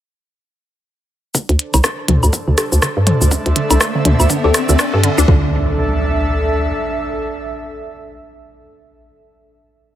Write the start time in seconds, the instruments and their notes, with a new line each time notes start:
1.34 synth arpeggio sound D3, analog synth pad D4, synth texture C5, kick, riser, shaker
1.49 fm bass D2, synth arpeggio sound D4, closed hi-hat
1.55 analog synth pad A4
1.59 closed hi-hat
1.74 fm bass C2, synth arpeggio sound D3, closed hi-hat, cowbell, low woodblock, shaker
1.84 synth arpeggio sound D4, kick, cross-stick, shaker
2.08 fm bass D2, synth arpeggio sound D3, closed hi-hat, mid tom
2.23 fm bass D2, synth arpeggio sound D4, low woodblock, shaker
2.33 kick, shaker
2.48 fm bass D2, synth arpeggio sound D3
2.58 synth arpeggio sound D4, synth stab D4 G4 A4, cross-stick, closed hi-hat, shaker
2.72 fm bass D2, shaker
2.82 synth arpeggio sound D3, kick, cross-stick, shaker
2.97 fm bass G2, synth arpeggio sound D4, analog synth pad E5
3.07 closed hi-hat, mid tom, cowbell
3.21 fm bass D2, synth arpeggio sound D3, shaker
3.31 synth arpeggio sound D4, kick, shaker
3.46 fm bass D2, closed hi-hat
3.56 synth arpeggio sound D3, closed hi-hat
3.71 fm bass C2, synth arpeggio sound D4, closed hi-hat, low woodblock, shaker
3.81 kick, cross-stick, shaker
3.95 synth arpeggio sound D3
4.05 fm bass D2, synth arpeggio sound D4, closed hi-hat, mid tom
4.20 fm bass D2, low woodblock, shaker
4.30 synth arpeggio sound D3, kick, shaker
4.44 fm bass D2, synth arpeggio sound D4, synth stab D4 G4 A4, cowbell
4.54 cross-stick, closed hi-hat, shaker
4.69 fm bass D2, synth arpeggio sound D3, shaker
4.79 synth arpeggio sound D4, kick, cross-stick, shaker
4.94 fm bass G2, synth stab D4 G4 A4
5.04 synth arpeggio sound D3, closed hi-hat
5.18 fm bass D2, synth arpeggio sound D4, shaker
5.28 fm bass D2, synth arpeggio sound D3, synth stab D4 F4 A4, analog synth pad D4, kick, impact
5.37 analog synth pad A4
5.45 analog synth pad E5